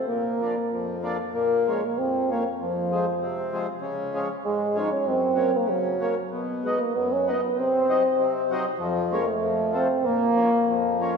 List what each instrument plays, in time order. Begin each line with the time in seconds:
0.07 accordion A#2, euphonium A#3
0.41 accordion F3 A#3 D4
0.72 accordion F2
1.03 accordion F3 A#3 D4
1.34 accordion A#2
1.67 accordion F3 A#3 C#4, euphonium G#3
1.85 euphonium A#3
1.97 accordion F2, euphonium C4
2.31 accordion F3 A#3 C#4, euphonium A#3
2.59 accordion F2
2.64 euphonium F3
2.91 accordion F3 G#3 C4
3.21 accordion C3
3.52 accordion F3 G#3 C4
3.81 accordion C#3
4.14 accordion F3 G#3 C#4
4.44 accordion G#2, euphonium G#3
4.74 accordion F3 G#3 C#4
4.79 euphonium D#4
4.92 euphonium C#4
5.04 accordion F#2, euphonium C4
5.35 accordion F#3 A#3 C#4
5.57 euphonium A#3
5.64 accordion C#3
5.69 euphonium F#3
6.00 accordion F#3 A#3 C#4
6.31 accordion B2
6.63 accordion F#3 B3 D#4, euphonium G#3
6.79 euphonium A#3
6.95 accordion F#2, euphonium B3
7.12 euphonium C#4
7.27 accordion F#3 B3 D#4, euphonium B3
7.56 accordion C3, euphonium C4
7.88 accordion F#3 C4 D#4
8.18 accordion C3
8.51 accordion F#3 C4 D#4
8.79 accordion F2
9.11 accordion F3 A#3 C#4, euphonium G#3
9.25 euphonium A3
9.40 accordion F2
9.72 accordion F3 A3 C4, euphonium C4
10.03 accordion A#2, euphonium A#3
10.35 accordion F3 A#3 C#4
10.68 accordion F2
11.00 accordion F3 A#3 C#4